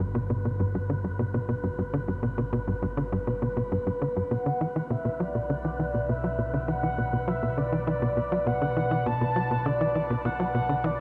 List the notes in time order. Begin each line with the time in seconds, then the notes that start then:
Already playing: G1 B4
0.00 G2
0.15 B2
0.30 B2
0.45 B2
0.60 G2
0.75 G2
0.90 D3
1.04 G2
1.19 B2
1.34 B2
1.49 B2
1.64 G2
1.79 G2
1.94 D3
2.08 G2
2.23 B2
2.38 B2
2.53 B2
2.68 G2
2.82 G2
2.97 D3
3.12 G2
3.27 B2
3.42 B2
3.57 B2
3.72 G2
3.87 G2
4.02 D3
4.17 G2
4.31 B1 B2 F#5
4.46 D3
4.61 E3
4.76 E3
4.90 B2 E5
5.05 B2
5.20 F#3 D5
5.35 B2
5.50 D3
5.65 E3
5.80 E3
5.95 B2
6.09 B2 E5
6.24 F#3
6.39 B2
6.54 D3
6.68 E3 F#5
6.83 E3
6.98 B2
7.13 B2
7.28 F#3 E5
7.43 B2
7.58 D3 D5
7.73 E3
7.87 E3
8.02 B2
8.17 B2
8.32 F#3
8.47 B2 F#5
8.62 D3
8.77 E3
8.91 E3
9.06 B2 A5
9.21 B2
9.36 F#3
9.51 B2
9.66 D3 D5
9.81 E3
9.95 E3
10.10 B2
10.25 B2 F#5
10.40 F#3
10.55 B2
10.69 D3
10.84 E3 D5